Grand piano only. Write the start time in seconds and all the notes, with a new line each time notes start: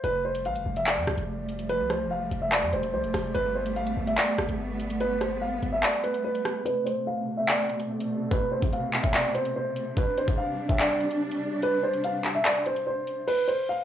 0.04 B4
0.25 C5
0.46 F5
0.77 E5
0.87 D5
1.69 B4
1.90 C5
2.11 F5
2.42 E5
2.52 D5
2.73 C5
2.94 C5
3.34 B4
3.55 C5
3.76 F5
4.07 E5
4.17 D5
5.01 B4
5.21 C5
5.42 F5
5.72 E5
5.83 D5
6.04 B4
6.25 B4
6.65 B4
6.86 C5
7.07 F5
7.37 E5
7.48 D5
8.31 B4
8.52 C5
8.73 F5
9.03 E5
9.14 D5
9.35 C5
9.56 C5
9.97 B4
10.18 C5
10.37 F5
10.69 E5
10.79 D5
11.63 B4
11.83 C5
12.04 F5
12.35 E5
12.45 D5
12.66 C5
12.87 C5
13.27 B4
13.48 C5
13.69 F5